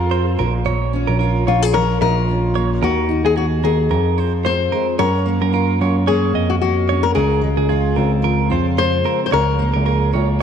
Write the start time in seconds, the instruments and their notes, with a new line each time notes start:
Already playing: tine electric piano F2, steel-string acoustic guitar F2 F3 F4, nylon-string guitar A#4
0.11 steel-string acoustic guitar C4, clean electric guitar C5
0.38 tine electric piano A#1, steel-string acoustic guitar A#2, clean electric guitar A#4
0.65 steel-string acoustic guitar A#2, clean electric guitar C#5
0.93 steel-string acoustic guitar C#4
1.07 tine electric piano A#1, clean electric guitar A#4
1.19 steel-string acoustic guitar F4, clean electric guitar A#4
1.47 tine electric piano A#1, steel-string acoustic guitar C#4, nylon-string guitar F4, clean electric guitar C#5
1.62 nylon-string guitar G#4
1.74 steel-string acoustic guitar F3, nylon-string guitar A#4, clean electric guitar C#5
2.01 tine electric piano A#1, steel-string acoustic guitar F4, nylon-string guitar A#4, clean electric guitar D#5
2.29 steel-string acoustic guitar C#4
2.55 steel-string acoustic guitar A#3, clean electric guitar C#5
2.82 tine electric piano D#2, steel-string acoustic guitar D#3, nylon-string guitar F#4, clean electric guitar A#4
3.09 steel-string acoustic guitar D#4
3.24 tine electric piano D#2, clean electric guitar G#4, nylon-string guitar G#4
3.36 steel-string acoustic guitar F#4, nylon-string guitar F#4, clean electric guitar G#4
3.63 tine electric piano D#2, steel-string acoustic guitar D#4, nylon-string guitar G#4, clean electric guitar A#4
3.91 tine electric piano F2, steel-string acoustic guitar F2, clean electric guitar A#4
4.18 steel-string acoustic guitar F4, clean electric guitar C5
4.45 steel-string acoustic guitar C4, clean electric guitar C5, nylon-string guitar C5
4.72 steel-string acoustic guitar G#3, clean electric guitar A#4
4.99 tine electric piano F#2, nylon-string guitar A#4, clean electric guitar C#5
5.26 steel-string acoustic guitar A#3
5.42 tine electric piano F#2, clean electric guitar A#4
5.53 steel-string acoustic guitar F4, clean electric guitar A#4
5.81 tine electric piano F#2, steel-string acoustic guitar C#4, clean electric guitar C#5
6.07 steel-string acoustic guitar A#3, nylon-string guitar G#4, clean electric guitar C#5
6.34 tine electric piano F2, clean electric guitar D#5
6.50 nylon-string guitar F#4
6.61 steel-string acoustic guitar A#3, nylon-string guitar F#4
6.89 steel-string acoustic guitar C#4, clean electric guitar C#5
7.03 nylon-string guitar A#4
7.15 tine electric piano C#2, steel-string acoustic guitar C#3, nylon-string guitar G#4, clean electric guitar A#4
7.41 steel-string acoustic guitar G#3
7.57 tine electric piano C#2, clean electric guitar G#4
7.69 steel-string acoustic guitar F4, clean electric guitar G#4
7.96 tine electric piano C#2, steel-string acoustic guitar C4, clean electric guitar A#4
8.22 steel-string acoustic guitar F3, clean electric guitar A#4
8.50 tine electric piano F2, steel-string acoustic guitar F4, clean electric guitar C5
8.77 steel-string acoustic guitar G#3, clean electric guitar C5, nylon-string guitar C5
9.04 steel-string acoustic guitar C4, clean electric guitar A#4
9.26 nylon-string guitar C5
9.31 tine electric piano C#2, steel-string acoustic guitar C#3, nylon-string guitar A#4, clean electric guitar C#5
9.59 steel-string acoustic guitar A#3
9.74 tine electric piano C#2, clean electric guitar A#4
9.86 steel-string acoustic guitar G#4, clean electric guitar A#4
10.13 tine electric piano C#2, steel-string acoustic guitar F4, clean electric guitar C#5